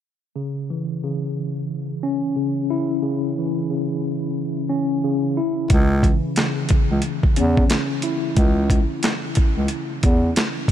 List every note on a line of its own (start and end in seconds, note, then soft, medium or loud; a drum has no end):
0.36 1.03 C#3 medium
0.70 2.70 E3 medium
1.04 2.35 C#3 medium
2.03 4.03 C#4 medium
2.36 3.02 C#3 medium
2.70 4.70 E4 medium
3.03 3.69 C#3 medium
3.38 5.38 E3 medium
3.70 5.03 C#3 medium
4.69 5.36 C#4 medium
5.04 5.37 C#3 medium
5.37 5.70 E4 medium
5.70 6.14 C#2 loud
5.70 6.37 C#3 medium
5.70 kick loud
5.70 closed hi-hat medium
6.02 8.03 E3 medium
6.02 kick medium
6.02 closed hi-hat medium
6.36 7.69 C#3 medium
6.36 snare loud
6.36 closed hi-hat medium
6.69 kick medium
6.69 closed hi-hat medium
6.91 7.01 C#2 medium
7.02 closed hi-hat medium
7.23 kick medium
7.36 7.64 E2 loud
7.36 8.37 C#4 medium
7.36 closed hi-hat medium
7.57 kick medium
7.70 8.37 C#3 medium
7.70 snare loud
7.70 snare medium
7.70 closed hi-hat medium
8.02 8.37 E4 medium
8.02 closed hi-hat medium
8.37 8.80 C#2 loud
8.37 kick loud
8.37 closed hi-hat medium
8.70 kick medium
8.70 closed hi-hat medium
9.03 snare loud
9.03 closed hi-hat medium
9.35 kick medium
9.35 closed hi-hat medium
9.57 9.68 C#2 medium
9.68 closed hi-hat medium
10.03 10.31 E2 medium
10.03 kick medium
10.03 closed hi-hat medium
10.36 snare loud
10.36 closed hi-hat loud
10.68 10.72 B2 loud
10.68 kick loud